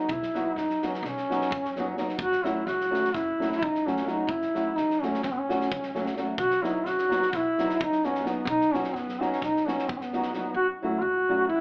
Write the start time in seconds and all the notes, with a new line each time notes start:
Already playing: D#4
0.08 B1 E4, kick
0.23 snare
0.34 F#3 B3 D#4 F#4, snare
0.56 F#2 D#4, snare
0.70 snare
0.82 F#3 B3 D#4 F#4, snare
0.86 C#4
0.94 D#4, snare
1.03 B1, snare
1.08 C#4
1.17 snare
1.30 F#3 B3 D#4 F#4, snare
1.41 snare
1.51 F#2, kick
1.65 snare
1.76 F#3 B3 D#4 F#4, snare
1.97 F#3 B3 D#4 F#4, snare
2.09 snare
2.18 F#1 F#4, kick
2.32 snare
2.43 F#3 A3 C#4 E4 F#4, snare
2.67 C#2 F#4, snare
2.81 snare
2.91 F#3 A3 C#4 F#4, snare
3.04 snare
3.14 F#1 E4, kick, snare
3.39 F#3 A3 C#4 F#4, snare
3.52 snare
3.61 C#2 D#4, kick
3.75 snare
3.86 F#3 A3 C#4 F#4, snare
3.97 snare
4.05 F#3 A3 C#4 D#4 F#4, snare
4.27 F#1 E4, kick
4.42 snare
4.54 F#3 A3 C#4 F#4, snare
4.76 C#2 D#4, snare
4.90 snare
5.02 F#3 A3 C#4 F#4, snare
5.14 snare
5.23 F#1 C#4, kick, snare
5.32 B3
5.38 C#4
5.48 F#3 A3 C#4 F#4, snare
5.61 snare
5.72 C#2, kick
5.83 snare
5.95 F#3 A3 C#4 F#4, snare
6.06 snare
6.17 F#3 A3 C#4 F#4, snare
6.38 B1 F#4, kick
6.51 snare
6.62 F#3 B3 D#4 E4 F#4, snare
6.86 F#2 F#4, snare
6.98 snare
7.09 F#3 B3 D#4 F#4, snare
7.22 snare
7.33 B1 E4, kick, snare
7.58 F#3 B3 D#4 F#4, snare
7.69 snare
7.80 F#2 D#4, kick
7.92 snare
8.04 F#3 B3 C#4 D#4 F#4, snare
8.15 snare
8.23 F#3 B3 D#4 F#4, snare
8.28 B3
8.45 B1 D#4, kick
8.61 snare
8.73 F#3 B3 C#4 D#4 F#4, snare
8.84 snare
8.94 F#2 B3, snare
9.09 snare
9.19 F#3 B3 C#4 D#4 F#4, snare
9.33 snare
9.42 B1 D#4, kick, snare
9.56 snare
9.66 F#3 B3 C#4 D#4 F#4, snare
9.79 snare
9.89 F#2 B3, kick
9.97 C#4, snare
10.01 B3
10.13 F#3 B3 D#4 F#4, snare
10.23 snare
10.34 F#3 B3 D#4 F#4, snare
10.54 F#2 F#4
10.80 F#3 A3 C#4 E4
10.84 F#4
11.01 C#2 F#4
11.29 F#3 A3 C#4 F#4
11.48 F#2 E4